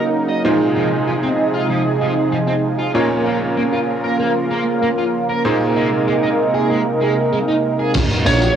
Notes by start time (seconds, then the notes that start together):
Already playing: A#2 C#3 F#3 A#3 D#4 F#4 A#4 C#5
0.29 D#5
0.45 A#2 C3 F3 G#3 D#4 F4 G#4 C5
0.76 F3
1.07 F3
1.23 C4
1.54 F4
1.70 F3
2.01 F3
2.32 F3
2.48 C4
2.79 F4
2.95 A#2 C#3 A#3 C#4 F4 A#4 C#5
3.26 A#3
3.57 A#3
3.73 F4
4.04 A#4
4.20 A#3
4.51 A#3
4.82 A#3
4.98 F4
5.29 A#4
5.45 A#2 C3 G#3 A#3 D#4 G#4 A#4 C5
5.76 G#3
6.07 G#3
6.23 D#4
6.54 G#4
6.70 G#3
7.01 G#3
7.32 G#3
7.48 D#4
7.79 G#4
7.94 A#1 C#3 F#3 A#3 D#4 F#4, kick, closed hi-hat, crash, tambourine, impact
8.10 tambourine
8.26 A#1 C#5, open hi-hat, tambourine
8.42 closed hi-hat, tambourine